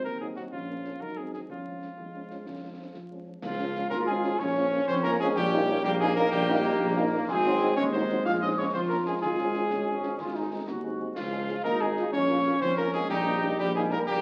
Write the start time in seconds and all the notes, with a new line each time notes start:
Already playing: C4
0.04 D#2 A#4, concert bass drum
0.20 F#3 C4 D#4 G#4
0.36 F#3 C4 D#4 F#4, snare
0.52 A#1 C#4 F4, concert bass drum
0.70 F3 A#3 C#4
0.85 F3 A#3 C#4, snare
1.00 F#2 D#4 A#4, concert bass drum
1.16 D#3 G#3 C4 G#4
1.32 D#3 G#3 C4 G#4, snare
1.49 F2 C#4 F4, concert bass drum
1.66 F3 G#3 C#4
1.81 F3 G#3 C#4, snare
1.97 F2 G#3, concert bass drum
2.13 F3 G#3 C#4
2.30 F3 G#3 C#4, snare
2.46 F2 C#4, concert bass drum, snare
2.61 F3 G#3 C4 C#4
2.78 F3 G#3 C#4
2.93 F2 F4, concert bass drum, snare
3.10 F3 G#3 C#4
3.26 F3 G#3 C#4
3.42 C#2 F3 F4 F5, concert bass drum, snare, crash
3.58 F3 G#3 C#4, snare
3.74 F3 G#3 C#4, snare
3.90 G#1 A#3 F4 A#4 A#5, concert bass drum, snare
4.07 F3 G#3 C#4 G#4 G#5
4.23 F3 G#3 C#4, snare
4.39 A#1 C#4 C#5 C#6, concert bass drum, snare
4.56 F3 A#3 C#4
4.71 F3 A#3 C#4
4.87 F2 C4 C5 C6, concert bass drum, snare
5.03 F3 A#3 C#4 A#4 A#5
5.19 F3 G#3 A#3 C#4 G#4 G#5
5.35 A#1 G3 G4 G5, concert bass drum, snare, crash
5.52 A#3 C#4 D#4, snare
5.69 A#3 C#4 D#4, snare
5.83 A#1 G3 A#3 G4 G5, concert bass drum, snare
6.00 G#3 A#3 C#4 D#4 G#4 G#5
6.16 A#3 C#4 D#4 A#4 A#5, snare
6.31 A#1 G3 G4 G5, concert bass drum, snare
6.49 A#3 C#4 D#4
6.65 A#3 C#4 D#4
6.81 A#1, concert bass drum, snare
6.97 A#3 C#4 D#4
7.13 A#3 C#4 D#4
7.28 G#1 G#3 C4 G#4 G#5, concert bass drum, snare, crash
7.45 F#3 C4 D#4, snare
7.61 F#3 C4 D#4, snare
7.76 D#2 G#3 C#4 C#5 C#6, concert bass drum, snare
7.92 F#3 C4 D#4 C5 C6
8.09 F#3 C4 D#4, snare
8.25 A#1 F4 F5 F6, concert bass drum, snare
8.41 F3 C#4 D#4 D#5 D#6
8.57 F3 C#4 C#5 C#6
8.73 F2 C4 F4 C5 C6, concert bass drum, snare
8.88 F3 A#3 C#4 A#4 A#5
9.05 F3 G#3 C#4 G#4 G#5
9.21 G#1 G#3 F4 G#4 G#5, concert bass drum, snare, crash
9.38 F3 C#4, snare
9.54 F3 C#4, snare
9.71 G#1 C#4, concert bass drum, snare
9.86 F3 C#4
10.02 F3 C#4, snare
10.19 G#1 F4, concert bass drum, snare
10.35 G#3 C4 D#4
10.51 G#3 C4 D#4
10.67 D#2 F#4, concert bass drum, snare
10.83 G#3 C4 D#4
11.00 G#3 C4 D#4
11.15 C#2 F3 F4 F5, concert bass drum, snare, crash
11.32 G#3 C#4 F4, snare
11.48 G#3 C#4 F4, snare
11.64 G#1 A#3 D#4 A#4 A#5, concert bass drum, snare
11.80 G#3 C#4 F4 G#4 G#5
11.97 G#3 C#4 F4, snare
12.12 A#1 C#4 C#5 C#6, concert bass drum, snare
12.29 A#3 C#4 F4
12.45 A#3 C#4 F4
12.61 F2 C4 C5 C6, concert bass drum, snare
12.77 A#3 C#4 F4 A#4 A#5
12.94 G#3 A#3 C#4 F4 G#4 G#5
13.09 A#1 G3 D#4 G4 G5, concert bass drum, snare, crash
13.25 A#3 C#4 D#4, snare
13.41 A#3 C#4 D#4, snare
13.58 A#1 G3 G4 G5, concert bass drum, snare
13.74 G#3 A#3 C#4 D#4 G#4 G#5
13.90 A#3 C#4 D#4 A#4 A#5, snare
14.06 A#1 G3 A#3 G4 G5, concert bass drum, snare